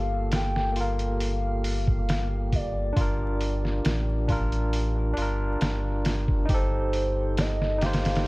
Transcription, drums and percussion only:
0.32 snare, open hi-hat
0.56 snare
0.76 open hi-hat
0.99 closed hi-hat
1.21 open hi-hat
1.65 open hi-hat
1.88 kick
2.09 snare, open hi-hat
2.52 kick, open hi-hat
2.97 kick, open hi-hat
3.41 open hi-hat
3.65 snare
3.85 snare, open hi-hat
4.29 kick, open hi-hat
4.52 closed hi-hat
4.73 open hi-hat
5.17 open hi-hat
5.61 snare, open hi-hat
6.05 snare, open hi-hat
6.28 kick
6.49 kick, open hi-hat
6.93 open hi-hat
7.37 snare, open hi-hat
7.62 snare
7.81 snare, open hi-hat
7.93 snare, open hi-hat
8.05 snare, open hi-hat
8.15 snare, open hi-hat

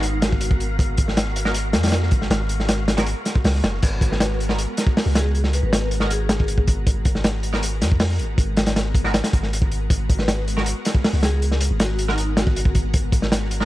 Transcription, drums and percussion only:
0.03 closed hi-hat
0.22 snare, closed hi-hat
0.33 kick
0.41 closed hi-hat
0.51 kick
0.60 closed hi-hat
0.79 kick, closed hi-hat
0.97 kick, closed hi-hat
1.08 snare
1.17 snare, closed hi-hat
1.36 closed hi-hat
1.45 snare
1.54 closed hi-hat
1.73 snare, closed hi-hat
1.83 snare, closed hi-hat
1.88 snare, closed hi-hat
1.92 snare, closed hi-hat
2.03 snare
2.11 kick, closed hi-hat
2.22 snare
2.31 snare, closed hi-hat
2.49 closed hi-hat
2.60 snare
2.69 snare, closed hi-hat
2.88 snare, closed hi-hat
2.98 snare, closed hi-hat
3.06 closed hi-hat
3.25 snare, closed hi-hat
3.35 kick
3.44 snare, open hi-hat
3.55 snare
3.64 snare, closed hi-hat
3.82 kick, closed hi-hat, crash
4.01 kick, closed hi-hat
4.12 snare
4.20 snare, closed hi-hat
4.40 closed hi-hat
4.49 snare
4.58 closed hi-hat
4.77 snare, closed hi-hat
4.87 kick
4.97 snare, open hi-hat
5.06 snare
5.15 snare, closed hi-hat
5.35 closed hi-hat
5.44 snare
5.53 closed hi-hat
5.73 snare, closed hi-hat
5.91 closed hi-hat
6.00 snare
6.11 closed hi-hat
6.29 snare, closed hi-hat
6.40 kick
6.48 closed hi-hat
6.58 kick
6.67 kick, closed hi-hat
6.87 kick, closed hi-hat
7.05 kick, closed hi-hat
7.15 snare
7.24 snare, closed hi-hat
7.43 closed hi-hat
7.54 snare
7.63 closed hi-hat
7.82 snare, closed hi-hat
7.92 kick
8.00 snare, open hi-hat
8.10 snare
8.19 closed hi-hat
8.38 kick, closed hi-hat
8.57 snare, closed hi-hat
8.66 snare, closed hi-hat
8.76 snare, closed hi-hat
8.94 kick, closed hi-hat
9.04 snare
9.14 snare, closed hi-hat
9.24 snare, closed hi-hat
9.33 kick, closed hi-hat
9.43 snare
9.53 closed hi-hat
9.62 kick
9.72 closed hi-hat
9.90 kick, closed hi-hat
10.10 kick, closed hi-hat
10.19 snare
10.28 snare, closed hi-hat
10.48 closed hi-hat
10.57 snare
10.66 closed hi-hat
10.85 snare, closed hi-hat
10.95 kick
11.04 snare, open hi-hat
11.13 snare
11.23 snare, closed hi-hat
11.42 closed hi-hat
11.52 snare
11.61 closed hi-hat
11.80 snare, closed hi-hat
11.99 closed hi-hat
12.09 snare
12.18 closed hi-hat
12.37 snare, closed hi-hat
12.47 kick
12.56 closed hi-hat
12.65 kick
12.75 kick, closed hi-hat
12.94 kick, closed hi-hat
13.12 kick, closed hi-hat
13.22 snare
13.32 snare, closed hi-hat
13.51 closed hi-hat
13.61 snare

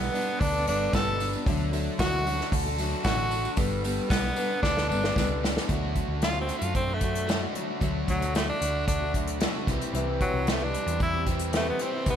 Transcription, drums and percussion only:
0.15 open hi-hat
0.27 tambourine
0.40 kick, open hi-hat, tambourine
0.53 tambourine
0.67 open hi-hat
0.93 kick, snare, open hi-hat, tambourine
1.20 open hi-hat, tambourine
1.33 tambourine
1.46 kick, open hi-hat, tambourine
1.59 tambourine
1.73 open hi-hat, tambourine
1.87 tambourine
1.99 kick, snare, open hi-hat, tambourine
2.27 open hi-hat
2.40 snare, tambourine
2.52 kick, open hi-hat, tambourine
2.66 tambourine
2.78 open hi-hat, tambourine
3.04 kick, snare, open hi-hat, tambourine
3.31 open hi-hat, tambourine
3.45 tambourine
3.57 kick, open hi-hat, tambourine
3.72 tambourine
3.84 open hi-hat, tambourine
3.98 tambourine
4.10 kick, snare, open hi-hat, tambourine
4.25 tambourine
4.36 open hi-hat, tambourine
4.51 tambourine
4.63 kick, snare
4.77 snare, tambourine
4.92 tambourine
5.04 snare
5.16 kick, snare, tambourine
5.44 snare, tambourine
5.57 snare, tambourine
5.69 kick, closed hi-hat
5.96 kick, closed hi-hat
6.22 snare, closed hi-hat
6.49 closed hi-hat
6.62 closed hi-hat
6.75 kick, closed hi-hat
7.01 kick, closed hi-hat
7.15 closed hi-hat
7.29 snare, closed hi-hat
7.55 closed hi-hat
7.81 kick, closed hi-hat
8.08 kick, closed hi-hat
8.22 closed hi-hat
8.35 snare, closed hi-hat
8.62 closed hi-hat
8.88 kick, closed hi-hat
9.14 kick, closed hi-hat
9.27 closed hi-hat
9.40 snare, closed hi-hat
9.67 kick, closed hi-hat
9.81 closed hi-hat
9.95 closed hi-hat
10.21 kick, closed hi-hat
10.47 snare, closed hi-hat
10.74 closed hi-hat
10.88 closed hi-hat
11.00 kick, closed hi-hat
11.27 kick, closed hi-hat
11.39 closed hi-hat
11.53 snare, closed hi-hat
11.79 closed hi-hat
12.06 kick, closed hi-hat

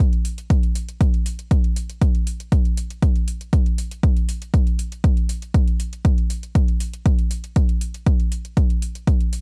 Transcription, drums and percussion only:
0.00 kick, closed hi-hat
0.13 closed hi-hat
0.25 open hi-hat
0.38 closed hi-hat
0.50 kick, closed hi-hat
0.63 closed hi-hat
0.75 open hi-hat
0.89 closed hi-hat
1.01 kick, closed hi-hat
1.14 closed hi-hat
1.26 open hi-hat
1.39 closed hi-hat
1.51 kick, closed hi-hat
1.64 closed hi-hat
1.76 open hi-hat
1.90 closed hi-hat
2.02 kick, closed hi-hat
2.15 closed hi-hat
2.27 open hi-hat
2.40 closed hi-hat
2.52 kick, closed hi-hat
2.65 closed hi-hat
2.77 open hi-hat
2.90 closed hi-hat
3.02 kick, closed hi-hat
3.16 closed hi-hat
3.28 open hi-hat
3.41 closed hi-hat
3.53 kick, closed hi-hat
3.66 closed hi-hat
3.78 open hi-hat
3.91 closed hi-hat
4.03 kick, closed hi-hat
4.17 closed hi-hat
4.29 open hi-hat
4.42 closed hi-hat
4.54 kick, closed hi-hat
4.67 closed hi-hat
4.79 open hi-hat
4.92 closed hi-hat
5.04 kick, closed hi-hat
5.17 closed hi-hat
5.29 open hi-hat
5.42 closed hi-hat
5.54 kick, closed hi-hat
5.68 closed hi-hat
5.80 open hi-hat
5.93 closed hi-hat
6.05 kick, closed hi-hat
6.18 closed hi-hat
6.30 open hi-hat
6.43 closed hi-hat
6.55 kick, closed hi-hat
6.68 closed hi-hat
6.80 open hi-hat
6.94 closed hi-hat
7.06 kick, closed hi-hat
7.19 closed hi-hat
7.31 open hi-hat
7.44 closed hi-hat
7.56 kick, closed hi-hat
7.69 closed hi-hat
7.81 open hi-hat
7.94 closed hi-hat
8.07 kick, closed hi-hat
8.20 closed hi-hat
8.32 open hi-hat
8.45 closed hi-hat
8.57 kick, closed hi-hat
8.70 closed hi-hat
8.82 open hi-hat
8.95 closed hi-hat
9.07 kick, closed hi-hat
9.21 closed hi-hat
9.33 open hi-hat

